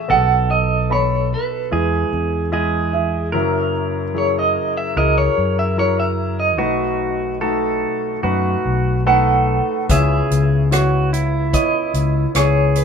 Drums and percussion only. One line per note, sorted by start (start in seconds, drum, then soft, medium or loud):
9.89 kick medium
9.89 closed hi-hat medium
10.31 closed hi-hat soft
10.72 cross-stick medium
10.72 closed hi-hat medium
11.14 closed hi-hat soft
11.53 kick medium
11.53 closed hi-hat medium
11.94 closed hi-hat soft
12.35 cross-stick medium
12.35 closed hi-hat medium
12.76 closed hi-hat medium